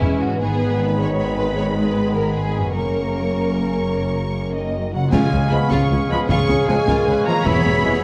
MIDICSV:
0, 0, Header, 1, 14, 480
1, 0, Start_track
1, 0, Tempo, 391389
1, 492, Time_signature, 12, 3, 24, 8
1, 9857, End_track
2, 0, Start_track
2, 0, Title_t, "Flute"
2, 0, Program_c, 0, 73
2, 6284, Note_on_c, 0, 85, 55
2, 6955, Note_off_c, 0, 85, 0
2, 7003, Note_on_c, 0, 85, 58
2, 7696, Note_off_c, 0, 85, 0
2, 7703, Note_on_c, 0, 85, 52
2, 9151, Note_on_c, 0, 95, 58
2, 9169, Note_off_c, 0, 85, 0
2, 9843, Note_off_c, 0, 95, 0
2, 9857, End_track
3, 0, Start_track
3, 0, Title_t, "Violin section"
3, 0, Program_c, 1, 48
3, 38, Note_on_c, 1, 76, 42
3, 129, Note_off_c, 1, 76, 0
3, 496, Note_on_c, 1, 83, 55
3, 3322, Note_off_c, 1, 83, 0
3, 3363, Note_on_c, 1, 85, 44
3, 5513, Note_off_c, 1, 85, 0
3, 5557, Note_on_c, 1, 75, 51
3, 6008, Note_off_c, 1, 75, 0
3, 6054, Note_on_c, 1, 78, 58
3, 6280, Note_on_c, 1, 80, 74
3, 6291, Note_off_c, 1, 78, 0
3, 6753, Note_off_c, 1, 80, 0
3, 6754, Note_on_c, 1, 83, 67
3, 6997, Note_on_c, 1, 85, 58
3, 6999, Note_off_c, 1, 83, 0
3, 7478, Note_off_c, 1, 85, 0
3, 7490, Note_on_c, 1, 83, 77
3, 7584, Note_off_c, 1, 83, 0
3, 7717, Note_on_c, 1, 85, 79
3, 8185, Note_on_c, 1, 80, 81
3, 8187, Note_off_c, 1, 85, 0
3, 8888, Note_off_c, 1, 80, 0
3, 8906, Note_on_c, 1, 82, 91
3, 9136, Note_on_c, 1, 83, 88
3, 9140, Note_off_c, 1, 82, 0
3, 9856, Note_off_c, 1, 83, 0
3, 9857, End_track
4, 0, Start_track
4, 0, Title_t, "Cor anglais"
4, 0, Program_c, 2, 69
4, 6296, Note_on_c, 2, 77, 55
4, 6960, Note_off_c, 2, 77, 0
4, 7015, Note_on_c, 2, 77, 50
4, 7706, Note_off_c, 2, 77, 0
4, 7713, Note_on_c, 2, 77, 50
4, 9140, Note_on_c, 2, 76, 60
4, 9159, Note_off_c, 2, 77, 0
4, 9857, Note_off_c, 2, 76, 0
4, 9857, End_track
5, 0, Start_track
5, 0, Title_t, "Clarinet"
5, 0, Program_c, 3, 71
5, 6288, Note_on_c, 3, 68, 51
5, 6956, Note_off_c, 3, 68, 0
5, 7004, Note_on_c, 3, 68, 59
5, 7706, Note_off_c, 3, 68, 0
5, 7721, Note_on_c, 3, 68, 61
5, 9119, Note_off_c, 3, 68, 0
5, 9138, Note_on_c, 3, 68, 57
5, 9842, Note_off_c, 3, 68, 0
5, 9857, End_track
6, 0, Start_track
6, 0, Title_t, "Violin section"
6, 0, Program_c, 4, 48
6, 0, Note_on_c, 4, 64, 64
6, 248, Note_on_c, 4, 66, 61
6, 249, Note_off_c, 4, 64, 0
6, 488, Note_off_c, 4, 66, 0
6, 490, Note_on_c, 4, 68, 63
6, 958, Note_off_c, 4, 68, 0
6, 968, Note_on_c, 4, 71, 72
6, 1197, Note_on_c, 4, 73, 64
6, 1208, Note_off_c, 4, 71, 0
6, 1670, Note_off_c, 4, 73, 0
6, 1677, Note_on_c, 4, 71, 57
6, 1908, Note_on_c, 4, 73, 66
6, 1914, Note_off_c, 4, 71, 0
6, 2006, Note_off_c, 4, 73, 0
6, 2160, Note_on_c, 4, 71, 51
6, 2633, Note_off_c, 4, 71, 0
6, 2633, Note_on_c, 4, 70, 57
6, 2874, Note_on_c, 4, 68, 54
6, 2875, Note_off_c, 4, 70, 0
6, 3354, Note_off_c, 4, 68, 0
6, 3365, Note_on_c, 4, 70, 57
6, 5992, Note_off_c, 4, 70, 0
6, 6279, Note_on_c, 4, 68, 56
6, 6283, Note_on_c, 4, 65, 51
6, 6508, Note_off_c, 4, 65, 0
6, 6519, Note_on_c, 4, 61, 37
6, 6617, Note_off_c, 4, 61, 0
6, 6758, Note_on_c, 4, 56, 48
6, 6855, Note_off_c, 4, 56, 0
6, 7000, Note_on_c, 4, 65, 62
6, 7224, Note_off_c, 4, 65, 0
6, 7242, Note_on_c, 4, 61, 46
6, 7338, Note_off_c, 4, 61, 0
6, 7473, Note_on_c, 4, 56, 48
6, 7571, Note_off_c, 4, 56, 0
6, 7720, Note_on_c, 4, 65, 59
6, 7943, Note_off_c, 4, 65, 0
6, 7968, Note_on_c, 4, 61, 48
6, 8062, Note_off_c, 4, 61, 0
6, 8193, Note_on_c, 4, 56, 52
6, 8289, Note_off_c, 4, 56, 0
6, 8431, Note_on_c, 4, 65, 65
6, 8653, Note_off_c, 4, 65, 0
6, 8667, Note_on_c, 4, 61, 56
6, 8763, Note_off_c, 4, 61, 0
6, 9131, Note_on_c, 4, 64, 69
6, 9360, Note_off_c, 4, 64, 0
6, 9373, Note_on_c, 4, 59, 39
6, 9471, Note_off_c, 4, 59, 0
6, 9616, Note_on_c, 4, 56, 43
6, 9712, Note_off_c, 4, 56, 0
6, 9857, Note_off_c, 4, 68, 0
6, 9857, End_track
7, 0, Start_track
7, 0, Title_t, "Viola section"
7, 0, Program_c, 5, 48
7, 0, Note_on_c, 5, 61, 57
7, 481, Note_off_c, 5, 61, 0
7, 492, Note_on_c, 5, 59, 59
7, 1193, Note_off_c, 5, 59, 0
7, 1218, Note_on_c, 5, 56, 58
7, 3332, Note_off_c, 5, 56, 0
7, 3368, Note_on_c, 5, 58, 45
7, 5872, Note_off_c, 5, 58, 0
7, 7713, Note_on_c, 5, 68, 58
7, 8383, Note_off_c, 5, 68, 0
7, 8429, Note_on_c, 5, 70, 60
7, 8670, Note_off_c, 5, 70, 0
7, 8677, Note_on_c, 5, 71, 68
7, 8900, Note_on_c, 5, 73, 66
7, 8911, Note_off_c, 5, 71, 0
7, 9856, Note_off_c, 5, 73, 0
7, 9857, End_track
8, 0, Start_track
8, 0, Title_t, "Harp"
8, 0, Program_c, 6, 46
8, 0, Note_on_c, 6, 52, 49
8, 0, Note_on_c, 6, 56, 40
8, 0, Note_on_c, 6, 64, 41
8, 0, Note_on_c, 6, 71, 42
8, 278, Note_on_c, 6, 44, 45
8, 312, Note_off_c, 6, 56, 0
8, 327, Note_on_c, 6, 56, 37
8, 381, Note_on_c, 6, 63, 37
8, 404, Note_off_c, 6, 52, 0
8, 424, Note_off_c, 6, 71, 0
8, 439, Note_on_c, 6, 71, 39
8, 459, Note_off_c, 6, 64, 0
8, 3154, Note_on_c, 6, 42, 36
8, 3208, Note_on_c, 6, 61, 29
8, 3260, Note_on_c, 6, 66, 30
8, 3282, Note_off_c, 6, 44, 0
8, 3306, Note_off_c, 6, 56, 0
8, 3315, Note_on_c, 6, 70, 29
8, 3333, Note_off_c, 6, 63, 0
8, 3363, Note_off_c, 6, 71, 0
8, 6060, Note_on_c, 6, 49, 51
8, 6099, Note_off_c, 6, 61, 0
8, 6113, Note_on_c, 6, 61, 42
8, 6168, Note_on_c, 6, 65, 44
8, 6198, Note_off_c, 6, 42, 0
8, 6226, Note_on_c, 6, 68, 42
8, 6251, Note_off_c, 6, 66, 0
8, 6278, Note_off_c, 6, 70, 0
8, 8913, Note_on_c, 6, 52, 51
8, 8965, Note_on_c, 6, 59, 45
8, 9027, Note_on_c, 6, 64, 44
8, 9053, Note_off_c, 6, 49, 0
8, 9064, Note_off_c, 6, 68, 0
8, 9079, Note_on_c, 6, 68, 44
8, 9080, Note_off_c, 6, 61, 0
8, 9107, Note_off_c, 6, 65, 0
8, 9857, Note_off_c, 6, 52, 0
8, 9857, Note_off_c, 6, 59, 0
8, 9857, Note_off_c, 6, 64, 0
8, 9857, Note_off_c, 6, 68, 0
8, 9857, End_track
9, 0, Start_track
9, 0, Title_t, "French horn section"
9, 0, Program_c, 7, 60
9, 5551, Note_on_c, 7, 51, 46
9, 6005, Note_off_c, 7, 51, 0
9, 6047, Note_on_c, 7, 54, 48
9, 6278, Note_on_c, 7, 56, 67
9, 6288, Note_off_c, 7, 54, 0
9, 6742, Note_on_c, 7, 59, 60
9, 6752, Note_off_c, 7, 56, 0
9, 6988, Note_off_c, 7, 59, 0
9, 6996, Note_on_c, 7, 61, 55
9, 7475, Note_on_c, 7, 59, 62
9, 7477, Note_off_c, 7, 61, 0
9, 7702, Note_on_c, 7, 61, 69
9, 7717, Note_off_c, 7, 59, 0
9, 8185, Note_on_c, 7, 56, 69
9, 8189, Note_off_c, 7, 61, 0
9, 8894, Note_on_c, 7, 58, 69
9, 8903, Note_off_c, 7, 56, 0
9, 9111, Note_on_c, 7, 59, 67
9, 9140, Note_off_c, 7, 58, 0
9, 9829, Note_off_c, 7, 59, 0
9, 9857, End_track
10, 0, Start_track
10, 0, Title_t, "Trombone section"
10, 0, Program_c, 8, 61
10, 0, Note_on_c, 8, 52, 56
10, 0, Note_on_c, 8, 56, 60
10, 439, Note_off_c, 8, 56, 0
10, 446, Note_off_c, 8, 52, 0
10, 497, Note_on_c, 8, 51, 53
10, 500, Note_on_c, 8, 59, 52
10, 3367, Note_on_c, 8, 61, 47
10, 3372, Note_off_c, 8, 51, 0
10, 3373, Note_off_c, 8, 59, 0
10, 3376, Note_on_c, 8, 49, 43
10, 5993, Note_off_c, 8, 61, 0
10, 5998, Note_off_c, 8, 49, 0
10, 6759, Note_on_c, 8, 53, 54
10, 6763, Note_on_c, 8, 56, 56
10, 6845, Note_off_c, 8, 53, 0
10, 6847, Note_off_c, 8, 56, 0
10, 7464, Note_on_c, 8, 53, 58
10, 7467, Note_on_c, 8, 56, 57
10, 7553, Note_off_c, 8, 53, 0
10, 7555, Note_off_c, 8, 56, 0
10, 8164, Note_on_c, 8, 56, 53
10, 8167, Note_on_c, 8, 53, 62
10, 8259, Note_off_c, 8, 56, 0
10, 8261, Note_off_c, 8, 53, 0
10, 8906, Note_on_c, 8, 53, 58
10, 8911, Note_on_c, 8, 56, 50
10, 8990, Note_off_c, 8, 53, 0
10, 8993, Note_off_c, 8, 56, 0
10, 9610, Note_on_c, 8, 52, 57
10, 9610, Note_on_c, 8, 56, 64
10, 9698, Note_off_c, 8, 52, 0
10, 9698, Note_off_c, 8, 56, 0
10, 9857, End_track
11, 0, Start_track
11, 0, Title_t, "Timpani"
11, 0, Program_c, 10, 47
11, 6292, Note_on_c, 10, 49, 75
11, 6958, Note_off_c, 10, 49, 0
11, 9857, End_track
12, 0, Start_track
12, 0, Title_t, "Cello section"
12, 0, Program_c, 11, 48
12, 18, Note_on_c, 11, 40, 43
12, 113, Note_off_c, 11, 40, 0
12, 488, Note_on_c, 11, 44, 49
12, 3319, Note_off_c, 11, 44, 0
12, 3357, Note_on_c, 11, 42, 40
12, 5988, Note_off_c, 11, 42, 0
12, 6283, Note_on_c, 11, 37, 64
12, 6379, Note_off_c, 11, 37, 0
12, 6521, Note_on_c, 11, 37, 47
12, 6618, Note_off_c, 11, 37, 0
12, 6753, Note_on_c, 11, 37, 50
12, 6851, Note_off_c, 11, 37, 0
12, 6999, Note_on_c, 11, 37, 56
12, 7095, Note_off_c, 11, 37, 0
12, 7237, Note_on_c, 11, 37, 49
12, 7334, Note_off_c, 11, 37, 0
12, 7476, Note_on_c, 11, 37, 47
12, 7573, Note_off_c, 11, 37, 0
12, 7711, Note_on_c, 11, 37, 65
12, 7809, Note_off_c, 11, 37, 0
12, 7953, Note_on_c, 11, 37, 45
12, 8050, Note_off_c, 11, 37, 0
12, 8185, Note_on_c, 11, 37, 53
12, 8283, Note_off_c, 11, 37, 0
12, 8428, Note_on_c, 11, 37, 56
12, 8524, Note_off_c, 11, 37, 0
12, 8659, Note_on_c, 11, 37, 46
12, 8757, Note_off_c, 11, 37, 0
12, 9140, Note_on_c, 11, 40, 66
12, 9237, Note_off_c, 11, 40, 0
12, 9383, Note_on_c, 11, 40, 44
12, 9479, Note_off_c, 11, 40, 0
12, 9618, Note_on_c, 11, 40, 51
12, 9715, Note_off_c, 11, 40, 0
12, 9857, End_track
13, 0, Start_track
13, 0, Title_t, "Double bass section"
13, 0, Program_c, 12, 48
13, 13, Note_on_c, 12, 28, 43
13, 109, Note_off_c, 12, 28, 0
13, 490, Note_on_c, 12, 32, 59
13, 3320, Note_off_c, 12, 32, 0
13, 3376, Note_on_c, 12, 30, 41
13, 5997, Note_off_c, 12, 30, 0
13, 6285, Note_on_c, 12, 37, 68
13, 6382, Note_off_c, 12, 37, 0
13, 6531, Note_on_c, 12, 37, 40
13, 6626, Note_off_c, 12, 37, 0
13, 6773, Note_on_c, 12, 37, 43
13, 6867, Note_off_c, 12, 37, 0
13, 7004, Note_on_c, 12, 37, 57
13, 7099, Note_off_c, 12, 37, 0
13, 7243, Note_on_c, 12, 37, 47
13, 7339, Note_off_c, 12, 37, 0
13, 7487, Note_on_c, 12, 37, 49
13, 7582, Note_off_c, 12, 37, 0
13, 7723, Note_on_c, 12, 37, 69
13, 7818, Note_off_c, 12, 37, 0
13, 7953, Note_on_c, 12, 37, 49
13, 8050, Note_off_c, 12, 37, 0
13, 8198, Note_on_c, 12, 37, 49
13, 8293, Note_off_c, 12, 37, 0
13, 8428, Note_on_c, 12, 37, 70
13, 8524, Note_off_c, 12, 37, 0
13, 8669, Note_on_c, 12, 37, 44
13, 8764, Note_off_c, 12, 37, 0
13, 9148, Note_on_c, 12, 28, 68
13, 9243, Note_off_c, 12, 28, 0
13, 9382, Note_on_c, 12, 28, 41
13, 9478, Note_off_c, 12, 28, 0
13, 9616, Note_on_c, 12, 28, 46
13, 9713, Note_off_c, 12, 28, 0
13, 9857, End_track
14, 0, Start_track
14, 0, Title_t, "Drums"
14, 6283, Note_on_c, 9, 35, 68
14, 6283, Note_on_c, 9, 38, 61
14, 6283, Note_on_c, 9, 49, 43
14, 6405, Note_off_c, 9, 35, 0
14, 6405, Note_off_c, 9, 38, 0
14, 6405, Note_off_c, 9, 49, 0
14, 6997, Note_on_c, 9, 35, 61
14, 6997, Note_on_c, 9, 38, 65
14, 7119, Note_off_c, 9, 35, 0
14, 7119, Note_off_c, 9, 38, 0
14, 7713, Note_on_c, 9, 35, 72
14, 7713, Note_on_c, 9, 38, 62
14, 7835, Note_off_c, 9, 35, 0
14, 7835, Note_off_c, 9, 38, 0
14, 7954, Note_on_c, 9, 38, 48
14, 8076, Note_off_c, 9, 38, 0
14, 8195, Note_on_c, 9, 38, 45
14, 8318, Note_off_c, 9, 38, 0
14, 8434, Note_on_c, 9, 35, 59
14, 8434, Note_on_c, 9, 38, 60
14, 8557, Note_off_c, 9, 35, 0
14, 8557, Note_off_c, 9, 38, 0
14, 9143, Note_on_c, 9, 35, 72
14, 9143, Note_on_c, 9, 38, 56
14, 9265, Note_off_c, 9, 35, 0
14, 9265, Note_off_c, 9, 38, 0
14, 9857, End_track
0, 0, End_of_file